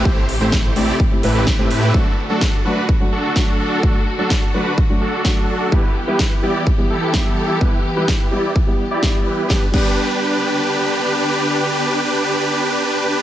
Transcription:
<<
  \new Staff \with { instrumentName = "Supersaw synth" } { \time 4/4 \key g \major \tempo 4 = 127 <a c' e' g' c''>8 r16 <a c' e' g' c''>8. <a c' e' g' d''>8 r8 <a c' e' g' b'>8. <a c' e' g' b'>8. | <d' fis' a'>8 r16 <d' fis' a'>8. <d' fis' b'>8 r8 <d' fis' a'>8. <d' fis' a'>8. | <d' fis' a'>8 r16 <d' fis' a'>8. <d' fis' b'>8 r8 <d' fis' a'>8. <d' fis' a'>8. | <e' g' b'>8 r16 <e' g' b'>8. <e' g' d''>8 r8 <e' g' a'>8. <e' g' a'>8. |
<e' g' b'>8 r16 <e' g' b'>8. <e' g' d''>8 r8. <e' g' d''>8. <e' g' b'>8 | <d' g' b'>16 r16 <d' g' b'>2.~ <d' g' b'>8~ | <d' g' b'>1 | }
  \new Staff \with { instrumentName = "Felt piano" } { \time 4/4 \key g \major <a, a c' e' g'>16 r8 <a, a c' e' g'>16 r8 <a, a c' e' g'>16 r8 <a, a c' e' g'>16 <a, a c' e' b'>16 r8 <a, a c' e' g'>16 r8 | <fis a d' fis'>16 r8 <fis a d' fis'>16 r8 <fis a d' fis'>16 r8 <fis a d' fis'>16 r8 <fis a d' fis'>4 | <fis a d' fis'>16 r8 <fis a d' fis'>16 r8 <fis a d' fis'>16 r8 <fis a d' fis'>16 r8 <fis a d' fis'>4 | <g b e' g'>16 r8 <g b e' g'>16 r8 <g b e' g'>16 r8 <g b e' g'>16 r8 <g b e' g'>4 |
<g b e' g'>16 r8 <g b e' g'>16 r8 <g b e' g'>16 r8 <g b e' g'>16 r8 <g b e' g'>4 | <g b d' g'>16 r16 <g b d' g'>2.~ <g b d' g'>8~ | <g b d' g'>1 | }
  \new Staff \with { instrumentName = "String section" } { \time 4/4 \key g \major << { <c g'>1 | <d fis'>1~ | <d fis'>1 | <e g'>1~ |
<e g'>1 | <d b g'>1~ | <d b g'>1 | } \\ { a1~ | a1~ | a1 | b1~ |
b1 | r1 | r1 | } >> }
  \new Staff \with { instrumentName = "Detuned saw bass" } { \clef bass \time 4/4 \key g \major a,,8. a,,8. a,,16 r8. a,,8. a,8. | r1 | r1 | r1 |
r1 | r1 | r1 | }
  \new DrumStaff \with { instrumentName = "Drums" } \drummode { \time 4/4 bd8 hho8 <bd sn>8 hho8 bd8 hho8 <bd sn>8 hho8 | bd4 <bd sn>4 bd4 <bd sn>4 | bd4 <bd sn>4 bd4 <bd sn>4 | bd4 <bd sn>4 bd4 <bd sn>4 |
bd4 <bd sn>4 bd4 <bd sn>4 | <bd sn>8 <cymc bd>8 r4 r4 r4 | r4 r4 r4 r4 | }
>>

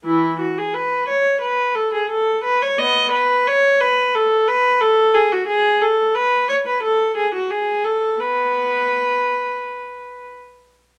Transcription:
\new Staff \with { instrumentName = "Viola" } { \time 4/4 \key b \mixolydian \tempo 4 = 88 << { e'8 fis'16 gis'16 b'8 cis''8 b'8 a'16 gis'16 a'8 b'16 cis''16 | dis''8 b'8 cis''8 b'8 a'8 b'8 a'8 gis'16 fis'16 | gis'8 a'8 b'8 cis''16 b'16 a'8 gis'16 fis'16 gis'8 a'8 | b'2. r4 | } \\ { e8 r2. r8 | b8 r2. r8 | r1 | b4. r2 r8 | } >> }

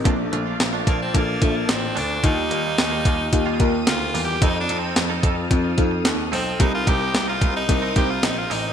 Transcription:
<<
  \new Staff \with { instrumentName = "String machine" } { \time 4/4 \key bes \major \tempo 4 = 110 << { f''1 | ees'''1~ | ees'''1 | ees'''1 | } \\ { <d'' a''>1 | <g' f''>1 | <a' f''>1 | <c'' bes''>1 | } >> }
  \new Staff \with { instrumentName = "FM electric piano" } { \time 4/4 \key bes \major <bes d' f' a'>2 <bes d' f' a'>8 <bes d' f' a'>4. | <bes ees' f' g'>2 <bes ees' f' g'>8 <bes ees' f' bes'>4. | <c' ees' f' a'>2 <c' ees' f' a'>8 <c' ees' f' a'>4. | <c' ees' g' bes'>2 <c' ees' g' bes'>8 <c' ees' g' bes'>4. | }
  \new Staff \with { instrumentName = "FM electric piano" } { \clef bass \time 4/4 \key bes \major bes,4. r2 r8 | ees4. r2 r8 | r1 | c4. r2 r8 | }
  \new Staff \with { instrumentName = "Tenor saxophone" } { \time 4/4 \key bes \major r4. bes16 c'16 bes8 a16 bes16 c'8 d'8 | ees'2~ ees'8 r8 \tuplet 3/2 { f'4 g'8 } | \tuplet 3/2 { ees'8 d'8 c'8~ } c'16 r2 r16 c'8 | ees'16 f'16 g'8 g'16 f'8 ees'8. g'16 f'16 ees'16 f'16 ees'8 | }
  \new Staff \with { instrumentName = "Clean electric guitar" } { \time 4/4 \key bes \major <a d' f'>8 <a d' f'>16 <a d' f'>16 r16 <a d' f'>16 <a d' f'>16 r4. r16 <a d' f'>16 <a d' f'>16 | <g bes f'>8 <g bes f'>16 <g bes f'>16 r16 <g bes f'>16 <g bes f'>16 r8 <g bes f'>16 <g bes f'>16 r8. <g bes f'>8 | <c' ees' a'>8 <c' ees' a'>16 <c' ees' a'>16 r16 <c' ees' a'>16 <c' ees' a'>16 r4. r16 <c' ees' a'>16 <c' ees' a'>16 | <c' ees' bes'>8 <c' ees' bes'>16 <c' ees' bes'>16 r16 <c' ees' bes'>16 <c' ees' bes'>16 r8 <c' ees' bes'>16 <c' ees' bes'>16 r8. <c' ees' bes'>8 | }
  \new Staff \with { instrumentName = "Grand piano" } { \clef bass \time 4/4 \key bes \major bes,,8 bes,,8 bes,,8 bes,,8 bes,,8 bes,,8 a,,8 d,8 | ees,8 ees,8 ees,8 ees,8 ees,8 ees,8 d,8 e,8 | f,8 f,8 f,8 f,8 f,8 f,8 ees,8 ces,8 | c,8 c,8 c,8 c,8 c,8 c,8 bes,,8 a,,8 | }
  \new DrumStaff \with { instrumentName = "Drums" } \drummode { \time 4/4 <hh bd>8 hh8 <hh sn>8 <hh bd>8 <hh bd>8 <hh bd>8 <hh sn>8 hho8 | <hh bd>8 hh8 <hh sn>8 <hh bd>8 <hh bd>8 <hh bd>8 <hh sn>8 hho8 | <hh bd>8 hh8 <hh sn>8 <hh bd>8 <hh bd>8 <hh bd>8 <hh sn>8 hho8 | <hh bd>8 <hh bd>8 <hh sn>8 <hh bd>8 <hh bd>8 <hh bd>8 <hh sn>8 hho8 | }
>>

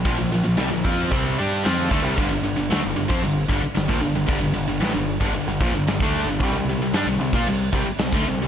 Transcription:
<<
  \new Staff \with { instrumentName = "Distorted electric guitar" } { \clef bass \time 4/4 \key g \dorian \tempo 4 = 113 <bes, f>16 <bes, f>16 <bes, f>16 <bes, f>16 <c g>16 <bes, f>16 <f c' f'>8 <c g c'>8 <g d' g'>8 <f c' f'>8 <d a>16 <c g>16 | <g, d>16 <g, d>16 <g, d>16 <g, d>16 <d a>16 <g, d>16 <g, d>16 <f c'>16 <g, d>8 <g, d>16 r16 <g, d>16 <bes, f>16 <g, d>16 <g, d>16 | <g, d>16 <g, d>16 <g, d>16 <g, d>16 <a, e>16 <g, d>8 <g, d>16 <g, d>16 <g, d>16 <bes, f>16 <g, d>16 <g, d>16 <d a d'>8 <g, d>16 | <c g>16 <c g>16 <c g>16 <c g>16 <g d'>16 <c g>16 <c g>16 <bes f'>16 <c g>8 <c g>16 r16 <c g>16 <d a>16 <c g>16 <c g>16 | }
  \new Staff \with { instrumentName = "Picked electric bass" } { \clef bass \time 4/4 \key g \dorian bes,,16 bes,,16 bes,,16 bes,,16 c,16 bes,,16 f,8 c,8 g,8 f,8 d,16 c,16 | g,,16 g,,16 g,,16 g,,16 d,16 g,,16 g,,16 f,16 g,,8 g,,16 r16 g,,16 bes,,16 g,,16 g,,16 | g,,16 g,,16 g,,16 g,,16 a,,16 g,,8 g,,16 g,,16 g,,16 bes,,16 g,,16 g,,16 d,8 g,,16 | c,16 c,16 c,16 c,16 g,16 c,16 c,16 bes,16 c,8 c,16 r16 c,16 d,16 c,16 c,16 | }
  \new DrumStaff \with { instrumentName = "Drums" } \drummode { \time 4/4 <cymc bd>4 <cymc sn>8 bd8 <cymc bd>4 <cymc sn>8 bd8 | <cymc bd>4 <cymc sn>8. bd16 cymc8 bd8 <cymc sn>16 bd8. | <cymc bd>4 <cymc sn>8. bd16 cymc8 bd8 <cymc sn>16 bd8. | <cymc bd>4 <cymc sn>8. bd16 cymc8 bd8 <cymc sn>16 bd8. | }
>>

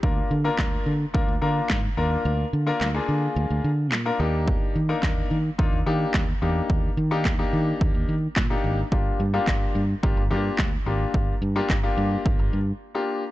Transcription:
<<
  \new Staff \with { instrumentName = "Grand piano" } { \time 4/4 \key ees \major \tempo 4 = 108 <bes d' f' bes'>8 r16 <bes d' f' bes'>8. r8 <bes d' f' bes'>16 r16 <bes d' f' bes'>8. r16 <bes d' f' bes'>8~ | <bes d' f' bes'>16 r8 <bes d' f' bes'>16 r16 <bes d' f' aes'>4~ <bes d' f' aes'>16 r8. <bes d' f' bes'>16 <bes d' ees' g'>8~ | <bes d' ees' g'>8 r16 <bes d' ees' bes'>8. r8 <bes d' ees' f'>16 r16 <bes d' ees' g'>8. r16 <bes d' ees' g'>8~ | <bes d' ees' g'>16 r8 <bes d' ees' g'>16 r16 <bes d' ees' g'>4~ <bes d' ees' g'>16 r8. <bes d' ees' g'>8 r16 |
<bes d' f' g'>8 r16 <bes d' f' g'>8. r8 <bes d' f' g'>16 r16 <bes d' f' g'>8. r16 <bes d' f' g'>8~ | <bes d' f' g'>16 r8 <bes d' f' g'>16 r16 <bes d' f' g'>4~ <bes d' f' g'>16 r8. <bes d' f' g'>8 r16 | }
  \new Staff \with { instrumentName = "Fingered electric bass" } { \clef bass \time 4/4 \key ees \major d,8 d8 d,8 d8 d,16 d,16 d8 aes,8 ees,8 | d,8 d8 d,8 d8 d,16 d,16 d8 bes,8 ees,8~ | ees,8 ees8 ees,8 ees8 ees,16 ees,16 ees8 ees,8 e,8 | ees,8 ees8 ees,8 ees8 ees,16 ees,16 ees8 bes,8 aes,,8 |
g,,8 g,8 g,,8 g,8 g,,16 g,,16 g,8 d,8 aes,,8 | g,,8 g,8 g,,8 g,8 g,,16 g,,16 g,8 r4 | }
  \new DrumStaff \with { instrumentName = "Drums" } \drummode { \time 4/4 bd4 <hc bd sn>4 bd4 <hc bd sn>4 | r4 <hc sn>4 r4 <hc sn>4 | bd4 <hc bd sn>4 bd4 <hc bd sn>4 | bd4 <hc bd sn>4 bd4 <hc bd sn>4 |
bd4 <hc bd sn>4 bd4 <hc bd sn>4 | bd4 <hc bd sn>4 bd4 r4 | }
>>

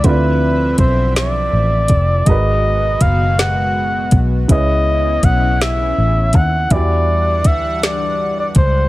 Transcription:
<<
  \new Staff \with { instrumentName = "Flugelhorn" } { \time 6/8 \key gis \phrygian \tempo 4. = 54 b'4 c''8 d''4. | dis''4 eis''8 fis''4 r8 | dis''4 fis''8 e''4 fis''8 | d''4 e''8 d''8. d''16 bis'8 | }
  \new Staff \with { instrumentName = "Grand piano" } { \time 6/8 \key gis \phrygian <d c' e' f' d''>2. | <gis dis' fis' ais' b'>2. | <cis cis' e' b' cis''>2. | <e e' fis' g' d''>2. | }
  \new Staff \with { instrumentName = "Analog synth pad" } { \time 6/8 \key gis \phrygian <d f c' e''>2. | <b, gis b fis'>2. | <cis cis' e'>2. | <e g d' fis''>2. | }
  \new Staff \with { instrumentName = "Fingered electric bass" } { \clef bass \time 6/8 \key gis \phrygian d,4 b,,4 a,,8 f,,8 | gis,,4 fis,,4. b,,8 | cis,4 b,,4 a,,8 dis,8 | e,4 d,4. cis,8 | }
  \new DrumStaff \with { instrumentName = "Drums" } \drummode { \time 6/8 <hh bd>4 <hh bd>8 <hh sn>4 <hh bd>8 | <hh bd>4 <hh bd>8 <hh sn>4 <hh bd>8 | <hh bd>4 <hh bd>8 <hh sn>4 <hh bd>8 | <hh bd>4 <hh bd>8 <hh sn>4 <hh bd>8 | }
>>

